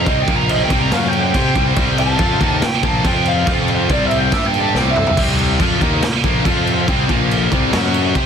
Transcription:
0.06 fingered electric bass C2, distorted electric guitar C3 G3 C4, lead electric guitar D#5, kick, crash
0.22 lead electric guitar G5
0.27 fingered electric bass A#1, distorted electric guitar A#2 F3 A#3, kick, crash
0.37 lead electric guitar A#5
0.49 lead electric guitar D#5, crash
0.64 lead electric guitar G5
0.70 fingered electric bass C2, distorted electric guitar C3 G3 C4, kick, crash
0.79 lead electric guitar A#5
0.92 fingered electric bass F#2, distorted electric guitar F#3 C#4 F#4, lead electric guitar F5, snare, crash
1.08 lead electric guitar G5
1.13 crash
1.22 lead electric guitar G5
1.34 fingered electric bass C3, distorted electric guitar C4 G4 C5, kick, crash
1.55 fingered electric bass C2, distorted electric guitar C3 G3 C4, kick, crash
1.76 fingered electric bass C2, distorted electric guitar C3 G3 C4, kick, crash
1.98 lead electric guitar A5, crash
2.19 fingered electric bass F2, distorted electric guitar F3 C4 F4, kick, crash
2.40 fingered electric bass D#2, distorted electric guitar D#3 A#3 D#4, kick, crash
2.62 lead electric guitar G5, muted distorted electric guitar stroke, muted fingered electric bass stroke, snare, crash
2.83 fingered electric bass A#1, distorted electric guitar A#2 F3 A#3, lead electric guitar A5, kick, crash
3.04 fingered electric bass F2, distorted electric guitar F3 C4 F4, lead electric guitar G5, kick, crash
3.25 lead electric guitar F5, crash
3.47 fingered electric bass F2, distorted electric guitar F3 C4 F4, kick, crash
3.68 crash
3.89 fingered electric bass C2, distorted electric guitar C3 G3 C4, lead electric guitar D5, kick, crash
4.06 lead electric guitar E5
4.11 crash
4.18 lead electric guitar G5
4.32 fingered electric bass G2, distorted electric guitar G3 D4 G4, lead electric guitar E5, kick, snare, crash
4.46 lead electric guitar G5
4.54 crash
4.61 lead electric guitar A5
4.74 fingered electric bass C2, distorted electric guitar C3 G3 C4, lead electric guitar G5, snare
4.90 lead electric guitar E5
4.96 mid tom
5.07 floor tom
5.17 fingered electric bass C2, distorted electric guitar C3 G3 C4, kick, crash
5.39 crash
5.60 fingered electric bass F2, distorted electric guitar F3 C4 F4, kick, crash
5.81 fingered electric bass D#2, distorted electric guitar D#3 A#3 D#4, kick, crash
6.03 muted fingered electric bass stroke, muted distorted electric guitar stroke, snare, crash
6.23 fingered electric bass A#1, distorted electric guitar A#2 F3 A#3, kick, crash
6.45 fingered electric bass F2, distorted electric guitar F3 C4 F4, kick, crash
6.67 crash
6.88 fingered electric bass C2, distorted electric guitar C3 G3 C4, kick, crash
7.09 fingered electric bass A#1, distorted electric guitar A#2 F3 A#3, kick, crash
7.31 crash
7.52 fingered electric bass C2, distorted electric guitar C3 G3 C4, kick, crash
7.73 fingered electric bass F#2, distorted electric guitar F#3 C#4 F#4, snare, crash
7.94 crash
8.15 fingered electric bass C3, distorted electric guitar C4 G4 C5, kick, crash

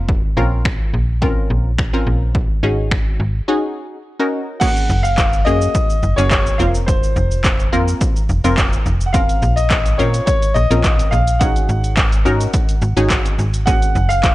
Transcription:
Already playing: fm bass F1
0.09 kick
0.37 fm bass A#1, synth stab C4 C#4 F4 A#4
0.65 finger snap, kick
0.93 fm bass A#1
1.21 synth stab C4 C#4 F4 A#4, kick
1.50 fm bass A#1
1.78 finger snap, kick
1.93 synth stab C4 C#4 F4 A#4
2.07 fm bass A#1
2.35 kick
2.63 fm bass G#1, synth stab C#4 D#4 F#4 G#4
2.91 finger snap, kick
3.20 fm bass G#1
3.48 synth stab C#4 D#4 F#4 G#4
4.19 synth stab C#4 D#4 F#4 A#4
4.60 synth stab A#3 C#4 F#4 G#4, grand piano F#5, kick, crash, shaker
4.77 shaker
4.90 fm bass F#1, shaker
5.03 grand piano F5, shaker
5.18 kick, clap, shaker
5.33 shaker
5.45 fm bass F#2, synth stab A#3 C#4 F#4 G#4, grand piano D#5, shaker
5.61 shaker
5.74 kick, shaker
5.90 shaker
6.03 fm bass F#1, shaker
6.16 fm bass F#1, synth stab A#3 C#4 F#4 G#4, grand piano C#5, shaker
6.31 kick, clap, shaker
6.46 shaker
6.58 fm bass F1, synth stab A#3 C4 F4 A#4, grand piano F5, shaker
6.74 shaker
6.86 grand piano C5, kick, shaker
7.03 shaker
7.16 fm bass F1, shaker
7.31 shaker
7.44 kick, clap, shaker
7.60 shaker
7.72 fm bass F2, synth stab A#3 C4 F4 A#4, shaker
7.88 shaker
8.01 kick, shaker
8.16 shaker
8.29 fm bass F1, shaker
8.44 fm bass F1, synth stab A#3 C4 F4 A#4, shaker
8.58 kick, clap, shaker
8.73 shaker
8.86 fm bass F1, shaker
9.01 shaker
9.06 grand piano F#5
9.13 synth stab C4 C#4 F4 A#4, grand piano F5, kick, closed hi-hat, shaker
9.29 closed hi-hat, shaker
9.42 fm bass A#1, shaker
9.56 grand piano D#5, closed hi-hat, shaker
9.70 kick, clap, closed hi-hat, shaker
9.86 closed hi-hat, shaker
9.98 fm bass A#2, synth stab C4 C#4 F4 A#4, grand piano C#5, shaker
10.14 closed hi-hat, shaker
10.26 grand piano C#5, kick, closed hi-hat, shaker
10.42 closed hi-hat, shaker
10.54 fm bass A#1, grand piano D#5, shaker
10.70 fm bass A#1, synth stab C4 C#4 F4 A#4, closed hi-hat, shaker
10.84 kick, clap, closed hi-hat, shaker
10.99 closed hi-hat, shaker
11.11 fm bass A#1, grand piano F5, shaker
11.27 closed hi-hat, shaker
11.39 synth stab C#4 D#4 F#4 G#4, grand piano F#5, kick, closed hi-hat, shaker
11.56 closed hi-hat, shaker
11.69 fm bass G#1, shaker
11.84 closed hi-hat, shaker
11.97 kick, clap, closed hi-hat, shaker
12.12 closed hi-hat, shaker
12.25 fm bass G#2, synth stab C#4 D#4 F#4 A#4, shaker
12.41 closed hi-hat, shaker
12.54 kick, closed hi-hat, shaker
12.69 closed hi-hat, shaker
12.82 fm bass G#1, shaker
12.97 fm bass G#1, synth stab C#4 D#4 F#4 G#4, closed hi-hat, shaker
13.10 kick, clap, closed hi-hat, shaker
13.26 closed hi-hat, shaker
13.39 fm bass G#1, shaker
13.54 closed hi-hat, shaker
13.66 synth stab A#3 C#4 F#4 G#4, grand piano F#5, kick, closed hi-hat, shaker
13.82 closed hi-hat, shaker
13.95 fm bass F#1, shaker
14.09 grand piano F5, closed hi-hat, shaker
14.23 kick, clap, closed hi-hat, shaker

